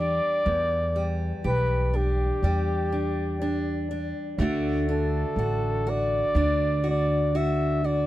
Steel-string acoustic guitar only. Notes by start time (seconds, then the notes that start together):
Already playing: E2 G3 G4
0.00 D4
0.46 E2
0.96 G3
1.44 G4
1.93 D4
2.44 G3
2.92 D4
3.42 D4
3.91 D4
4.39 D3 A3 D4 F#4
4.89 D4
5.39 F#4
5.87 F#4
6.36 D4
6.84 F#4
7.35 F#4
7.84 F#4